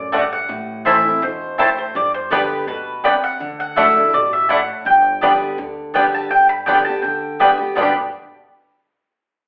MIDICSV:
0, 0, Header, 1, 6, 480
1, 0, Start_track
1, 0, Key_signature, 1, "major"
1, 0, Tempo, 363857
1, 650, Time_signature, 4, 2, 24, 8
1, 12505, End_track
2, 0, Start_track
2, 0, Title_t, "Mandolin"
2, 0, Program_c, 0, 25
2, 0, Note_on_c, 0, 74, 93
2, 430, Note_on_c, 0, 78, 92
2, 448, Note_off_c, 0, 74, 0
2, 1083, Note_off_c, 0, 78, 0
2, 1132, Note_on_c, 0, 76, 96
2, 1623, Note_on_c, 0, 72, 92
2, 1625, Note_off_c, 0, 76, 0
2, 2087, Note_off_c, 0, 72, 0
2, 2103, Note_on_c, 0, 72, 88
2, 2335, Note_off_c, 0, 72, 0
2, 2353, Note_on_c, 0, 72, 83
2, 2558, Note_off_c, 0, 72, 0
2, 2585, Note_on_c, 0, 74, 92
2, 2816, Note_off_c, 0, 74, 0
2, 2827, Note_on_c, 0, 72, 86
2, 3035, Note_off_c, 0, 72, 0
2, 3052, Note_on_c, 0, 71, 86
2, 3497, Note_off_c, 0, 71, 0
2, 3535, Note_on_c, 0, 71, 89
2, 4217, Note_off_c, 0, 71, 0
2, 4270, Note_on_c, 0, 78, 92
2, 4732, Note_off_c, 0, 78, 0
2, 4747, Note_on_c, 0, 78, 100
2, 4954, Note_off_c, 0, 78, 0
2, 4978, Note_on_c, 0, 76, 94
2, 5461, Note_on_c, 0, 74, 94
2, 5467, Note_off_c, 0, 76, 0
2, 5712, Note_on_c, 0, 76, 86
2, 5718, Note_off_c, 0, 74, 0
2, 5935, Note_off_c, 0, 76, 0
2, 5940, Note_on_c, 0, 78, 92
2, 6408, Note_off_c, 0, 78, 0
2, 6413, Note_on_c, 0, 79, 86
2, 7797, Note_off_c, 0, 79, 0
2, 8107, Note_on_c, 0, 81, 84
2, 8313, Note_off_c, 0, 81, 0
2, 8318, Note_on_c, 0, 79, 94
2, 8560, Note_off_c, 0, 79, 0
2, 8565, Note_on_c, 0, 83, 103
2, 8631, Note_off_c, 0, 83, 0
2, 8787, Note_on_c, 0, 79, 91
2, 9027, Note_off_c, 0, 79, 0
2, 9033, Note_on_c, 0, 81, 90
2, 9255, Note_off_c, 0, 81, 0
2, 9260, Note_on_c, 0, 79, 79
2, 9958, Note_off_c, 0, 79, 0
2, 10253, Note_on_c, 0, 83, 81
2, 10489, Note_off_c, 0, 83, 0
2, 12505, End_track
3, 0, Start_track
3, 0, Title_t, "Mandolin"
3, 0, Program_c, 1, 25
3, 161, Note_on_c, 1, 57, 103
3, 171, Note_on_c, 1, 66, 100
3, 177, Note_on_c, 1, 74, 112
3, 179, Note_on_c, 1, 78, 111
3, 292, Note_off_c, 1, 57, 0
3, 297, Note_off_c, 1, 66, 0
3, 300, Note_off_c, 1, 74, 0
3, 301, Note_off_c, 1, 78, 0
3, 1122, Note_on_c, 1, 60, 85
3, 1129, Note_on_c, 1, 64, 87
3, 1137, Note_on_c, 1, 72, 96
3, 1142, Note_on_c, 1, 81, 91
3, 1253, Note_off_c, 1, 60, 0
3, 1256, Note_off_c, 1, 64, 0
3, 1260, Note_off_c, 1, 72, 0
3, 1263, Note_off_c, 1, 81, 0
3, 2086, Note_on_c, 1, 60, 102
3, 2091, Note_on_c, 1, 64, 93
3, 2096, Note_on_c, 1, 72, 109
3, 2101, Note_on_c, 1, 81, 113
3, 2215, Note_off_c, 1, 60, 0
3, 2217, Note_off_c, 1, 64, 0
3, 2220, Note_off_c, 1, 72, 0
3, 2222, Note_off_c, 1, 81, 0
3, 3045, Note_on_c, 1, 59, 91
3, 3052, Note_on_c, 1, 67, 95
3, 3060, Note_on_c, 1, 74, 89
3, 3064, Note_on_c, 1, 79, 108
3, 3174, Note_off_c, 1, 59, 0
3, 3177, Note_off_c, 1, 67, 0
3, 3182, Note_off_c, 1, 74, 0
3, 3183, Note_off_c, 1, 79, 0
3, 4007, Note_on_c, 1, 59, 96
3, 4012, Note_on_c, 1, 67, 94
3, 4016, Note_on_c, 1, 74, 106
3, 4023, Note_on_c, 1, 79, 105
3, 4135, Note_off_c, 1, 59, 0
3, 4138, Note_off_c, 1, 67, 0
3, 4140, Note_off_c, 1, 74, 0
3, 4143, Note_off_c, 1, 79, 0
3, 4962, Note_on_c, 1, 57, 93
3, 4968, Note_on_c, 1, 64, 85
3, 4974, Note_on_c, 1, 74, 92
3, 4981, Note_on_c, 1, 78, 98
3, 5092, Note_off_c, 1, 57, 0
3, 5095, Note_off_c, 1, 64, 0
3, 5098, Note_off_c, 1, 74, 0
3, 5102, Note_off_c, 1, 78, 0
3, 5923, Note_on_c, 1, 57, 103
3, 5933, Note_on_c, 1, 64, 110
3, 5936, Note_on_c, 1, 74, 109
3, 5942, Note_on_c, 1, 78, 110
3, 6052, Note_off_c, 1, 57, 0
3, 6058, Note_off_c, 1, 64, 0
3, 6059, Note_off_c, 1, 74, 0
3, 6062, Note_off_c, 1, 78, 0
3, 6878, Note_on_c, 1, 59, 91
3, 6889, Note_on_c, 1, 67, 84
3, 6894, Note_on_c, 1, 74, 97
3, 6897, Note_on_c, 1, 79, 96
3, 7010, Note_off_c, 1, 59, 0
3, 7015, Note_off_c, 1, 67, 0
3, 7018, Note_off_c, 1, 74, 0
3, 7019, Note_off_c, 1, 79, 0
3, 7835, Note_on_c, 1, 59, 97
3, 7844, Note_on_c, 1, 67, 98
3, 7849, Note_on_c, 1, 74, 106
3, 7855, Note_on_c, 1, 79, 108
3, 7968, Note_off_c, 1, 59, 0
3, 7973, Note_off_c, 1, 67, 0
3, 7975, Note_off_c, 1, 74, 0
3, 7978, Note_off_c, 1, 79, 0
3, 8794, Note_on_c, 1, 59, 84
3, 8803, Note_on_c, 1, 67, 90
3, 8807, Note_on_c, 1, 74, 98
3, 8810, Note_on_c, 1, 79, 103
3, 8928, Note_off_c, 1, 59, 0
3, 8932, Note_off_c, 1, 67, 0
3, 8934, Note_off_c, 1, 74, 0
3, 8935, Note_off_c, 1, 79, 0
3, 9758, Note_on_c, 1, 59, 89
3, 9764, Note_on_c, 1, 67, 98
3, 9770, Note_on_c, 1, 74, 108
3, 9772, Note_on_c, 1, 79, 108
3, 9890, Note_off_c, 1, 59, 0
3, 9892, Note_off_c, 1, 67, 0
3, 9895, Note_off_c, 1, 74, 0
3, 9897, Note_off_c, 1, 79, 0
3, 10230, Note_on_c, 1, 59, 78
3, 10244, Note_on_c, 1, 67, 90
3, 10252, Note_on_c, 1, 74, 80
3, 10260, Note_on_c, 1, 79, 89
3, 10444, Note_off_c, 1, 59, 0
3, 10451, Note_off_c, 1, 67, 0
3, 10455, Note_off_c, 1, 74, 0
3, 10459, Note_off_c, 1, 79, 0
3, 12505, End_track
4, 0, Start_track
4, 0, Title_t, "Five-string banjo"
4, 0, Program_c, 2, 105
4, 183, Note_on_c, 2, 57, 58
4, 191, Note_on_c, 2, 62, 60
4, 217, Note_off_c, 2, 62, 0
4, 290, Note_off_c, 2, 57, 0
4, 1147, Note_on_c, 2, 57, 69
4, 1154, Note_on_c, 2, 60, 69
4, 1159, Note_on_c, 2, 64, 66
4, 1251, Note_off_c, 2, 57, 0
4, 1255, Note_off_c, 2, 60, 0
4, 1257, Note_off_c, 2, 64, 0
4, 2102, Note_on_c, 2, 57, 62
4, 2112, Note_on_c, 2, 60, 64
4, 2112, Note_on_c, 2, 64, 65
4, 2209, Note_off_c, 2, 57, 0
4, 2212, Note_off_c, 2, 60, 0
4, 2213, Note_off_c, 2, 64, 0
4, 3060, Note_on_c, 2, 55, 69
4, 3066, Note_on_c, 2, 59, 69
4, 3072, Note_on_c, 2, 62, 73
4, 3168, Note_off_c, 2, 55, 0
4, 3170, Note_off_c, 2, 59, 0
4, 3171, Note_off_c, 2, 62, 0
4, 4024, Note_on_c, 2, 55, 57
4, 4029, Note_on_c, 2, 59, 64
4, 4033, Note_on_c, 2, 62, 60
4, 4130, Note_off_c, 2, 55, 0
4, 4130, Note_off_c, 2, 59, 0
4, 4134, Note_off_c, 2, 62, 0
4, 4981, Note_on_c, 2, 57, 76
4, 4986, Note_on_c, 2, 62, 70
4, 5012, Note_off_c, 2, 62, 0
4, 5088, Note_off_c, 2, 57, 0
4, 5942, Note_on_c, 2, 57, 58
4, 5949, Note_on_c, 2, 62, 55
4, 5976, Note_off_c, 2, 62, 0
4, 6048, Note_off_c, 2, 57, 0
4, 6902, Note_on_c, 2, 55, 70
4, 6906, Note_on_c, 2, 59, 69
4, 6910, Note_on_c, 2, 62, 65
4, 7008, Note_off_c, 2, 55, 0
4, 7008, Note_off_c, 2, 59, 0
4, 7012, Note_off_c, 2, 62, 0
4, 7855, Note_on_c, 2, 55, 62
4, 7860, Note_on_c, 2, 59, 60
4, 7869, Note_on_c, 2, 62, 57
4, 7964, Note_off_c, 2, 55, 0
4, 7968, Note_off_c, 2, 59, 0
4, 7969, Note_off_c, 2, 62, 0
4, 8817, Note_on_c, 2, 55, 68
4, 8822, Note_on_c, 2, 59, 66
4, 8823, Note_on_c, 2, 62, 72
4, 8925, Note_off_c, 2, 55, 0
4, 8925, Note_off_c, 2, 59, 0
4, 8928, Note_off_c, 2, 62, 0
4, 9775, Note_on_c, 2, 55, 60
4, 9781, Note_on_c, 2, 59, 63
4, 9783, Note_on_c, 2, 62, 57
4, 9884, Note_off_c, 2, 55, 0
4, 9887, Note_off_c, 2, 59, 0
4, 9888, Note_off_c, 2, 62, 0
4, 10246, Note_on_c, 2, 55, 76
4, 10271, Note_on_c, 2, 59, 70
4, 10301, Note_on_c, 2, 62, 74
4, 10325, Note_on_c, 2, 67, 71
4, 10485, Note_off_c, 2, 55, 0
4, 10499, Note_off_c, 2, 59, 0
4, 10514, Note_off_c, 2, 62, 0
4, 10527, Note_off_c, 2, 67, 0
4, 12505, End_track
5, 0, Start_track
5, 0, Title_t, "Steel-string acoustic guitar"
5, 0, Program_c, 3, 25
5, 0, Note_on_c, 3, 42, 92
5, 151, Note_off_c, 3, 42, 0
5, 165, Note_on_c, 3, 43, 88
5, 625, Note_off_c, 3, 43, 0
5, 642, Note_on_c, 3, 45, 90
5, 1120, Note_on_c, 3, 52, 85
5, 1129, Note_on_c, 3, 57, 81
5, 1135, Note_on_c, 3, 60, 101
5, 1145, Note_on_c, 3, 64, 96
5, 1364, Note_off_c, 3, 64, 0
5, 1371, Note_off_c, 3, 52, 0
5, 1376, Note_off_c, 3, 57, 0
5, 1378, Note_off_c, 3, 60, 0
5, 1379, Note_on_c, 3, 64, 65
5, 1404, Note_on_c, 3, 60, 51
5, 1561, Note_off_c, 3, 45, 0
5, 1598, Note_off_c, 3, 64, 0
5, 1610, Note_off_c, 3, 60, 0
5, 1612, Note_on_c, 3, 47, 89
5, 2068, Note_off_c, 3, 47, 0
5, 2095, Note_on_c, 3, 45, 91
5, 2550, Note_off_c, 3, 45, 0
5, 2573, Note_on_c, 3, 43, 88
5, 3040, Note_on_c, 3, 50, 92
5, 3053, Note_on_c, 3, 55, 86
5, 3063, Note_on_c, 3, 59, 89
5, 3068, Note_on_c, 3, 67, 96
5, 3486, Note_off_c, 3, 43, 0
5, 3502, Note_off_c, 3, 50, 0
5, 3509, Note_off_c, 3, 55, 0
5, 3514, Note_off_c, 3, 59, 0
5, 3516, Note_off_c, 3, 67, 0
5, 3531, Note_on_c, 3, 47, 96
5, 3988, Note_off_c, 3, 47, 0
5, 4008, Note_on_c, 3, 48, 89
5, 4466, Note_off_c, 3, 48, 0
5, 4488, Note_on_c, 3, 50, 89
5, 4959, Note_on_c, 3, 54, 83
5, 4973, Note_on_c, 3, 57, 95
5, 4981, Note_on_c, 3, 62, 88
5, 4993, Note_on_c, 3, 64, 101
5, 5205, Note_off_c, 3, 64, 0
5, 5210, Note_off_c, 3, 54, 0
5, 5217, Note_off_c, 3, 57, 0
5, 5221, Note_off_c, 3, 62, 0
5, 5221, Note_on_c, 3, 64, 60
5, 5249, Note_on_c, 3, 62, 49
5, 5403, Note_off_c, 3, 50, 0
5, 5437, Note_off_c, 3, 64, 0
5, 5450, Note_on_c, 3, 47, 92
5, 5452, Note_off_c, 3, 62, 0
5, 5907, Note_off_c, 3, 47, 0
5, 5924, Note_on_c, 3, 45, 90
5, 6384, Note_off_c, 3, 45, 0
5, 6400, Note_on_c, 3, 43, 91
5, 6876, Note_on_c, 3, 50, 83
5, 6888, Note_on_c, 3, 55, 88
5, 6896, Note_on_c, 3, 59, 103
5, 6904, Note_on_c, 3, 67, 98
5, 7319, Note_off_c, 3, 43, 0
5, 7340, Note_off_c, 3, 50, 0
5, 7345, Note_off_c, 3, 55, 0
5, 7349, Note_off_c, 3, 59, 0
5, 7354, Note_off_c, 3, 67, 0
5, 7363, Note_on_c, 3, 50, 89
5, 7816, Note_off_c, 3, 50, 0
5, 7832, Note_on_c, 3, 50, 78
5, 7845, Note_on_c, 3, 55, 81
5, 7855, Note_on_c, 3, 59, 98
5, 7862, Note_on_c, 3, 67, 98
5, 8297, Note_off_c, 3, 50, 0
5, 8304, Note_off_c, 3, 55, 0
5, 8309, Note_off_c, 3, 59, 0
5, 8312, Note_off_c, 3, 67, 0
5, 8320, Note_on_c, 3, 43, 84
5, 8791, Note_on_c, 3, 50, 94
5, 8802, Note_on_c, 3, 55, 93
5, 8809, Note_on_c, 3, 59, 81
5, 8820, Note_on_c, 3, 67, 99
5, 9041, Note_off_c, 3, 67, 0
5, 9045, Note_off_c, 3, 50, 0
5, 9051, Note_off_c, 3, 55, 0
5, 9054, Note_off_c, 3, 59, 0
5, 9056, Note_on_c, 3, 67, 58
5, 9088, Note_on_c, 3, 59, 52
5, 9239, Note_off_c, 3, 43, 0
5, 9275, Note_off_c, 3, 67, 0
5, 9291, Note_off_c, 3, 59, 0
5, 9292, Note_on_c, 3, 50, 97
5, 9736, Note_off_c, 3, 50, 0
5, 9752, Note_on_c, 3, 50, 86
5, 9762, Note_on_c, 3, 55, 86
5, 9769, Note_on_c, 3, 59, 90
5, 9778, Note_on_c, 3, 67, 97
5, 9995, Note_off_c, 3, 67, 0
5, 10006, Note_off_c, 3, 50, 0
5, 10011, Note_off_c, 3, 55, 0
5, 10011, Note_on_c, 3, 67, 59
5, 10014, Note_off_c, 3, 59, 0
5, 10042, Note_on_c, 3, 59, 43
5, 10229, Note_on_c, 3, 43, 93
5, 10232, Note_off_c, 3, 67, 0
5, 10239, Note_off_c, 3, 59, 0
5, 10240, Note_on_c, 3, 47, 88
5, 10241, Note_on_c, 3, 50, 95
5, 10250, Note_on_c, 3, 55, 89
5, 10255, Note_on_c, 3, 59, 94
5, 10258, Note_on_c, 3, 67, 99
5, 10443, Note_off_c, 3, 43, 0
5, 10449, Note_off_c, 3, 47, 0
5, 10450, Note_off_c, 3, 50, 0
5, 10454, Note_off_c, 3, 55, 0
5, 10456, Note_off_c, 3, 59, 0
5, 10458, Note_off_c, 3, 67, 0
5, 12505, End_track
6, 0, Start_track
6, 0, Title_t, "Upright bass"
6, 0, Program_c, 4, 32
6, 0, Note_on_c, 4, 33, 88
6, 444, Note_off_c, 4, 33, 0
6, 647, Note_on_c, 4, 33, 93
6, 1402, Note_off_c, 4, 33, 0
6, 1611, Note_on_c, 4, 28, 92
6, 2364, Note_off_c, 4, 28, 0
6, 2573, Note_on_c, 4, 31, 92
6, 3326, Note_off_c, 4, 31, 0
6, 3524, Note_on_c, 4, 38, 89
6, 4280, Note_off_c, 4, 38, 0
6, 4493, Note_on_c, 4, 38, 89
6, 5245, Note_off_c, 4, 38, 0
6, 5449, Note_on_c, 4, 33, 92
6, 6202, Note_off_c, 4, 33, 0
6, 6415, Note_on_c, 4, 31, 97
6, 7166, Note_off_c, 4, 31, 0
6, 7366, Note_on_c, 4, 38, 86
6, 8121, Note_off_c, 4, 38, 0
6, 8317, Note_on_c, 4, 31, 89
6, 9075, Note_off_c, 4, 31, 0
6, 9278, Note_on_c, 4, 38, 85
6, 10036, Note_off_c, 4, 38, 0
6, 10244, Note_on_c, 4, 31, 93
6, 10484, Note_off_c, 4, 31, 0
6, 12505, End_track
0, 0, End_of_file